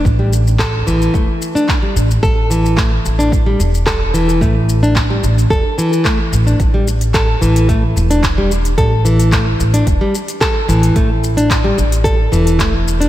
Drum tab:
HH |----------------|----------------|----------------|x--xx--xx--xx--x|
SH |x-xxx-xxx-xxx-xx|x-xxx-xxx-xxx-xx|x-xxx-xxx-xxx-xx|x-xxx-xxx-xxx-xx|
CP |----x-------x---|----x-------x---|----x-------x---|----x-------x---|
BD |o---o---o---o---|o---o---o---o---|o---o---o---o---|o---o---o---o---|

HH |x--xx--xx--xx--x|x--xx--xx--xx--x|
SH |x-xxx-xxx-xxx-xx|x-xxx-xxx-xxx-xx|
CP |----x-------x---|----x-------x---|
BD |o---o---o---o---|o---o---o---o---|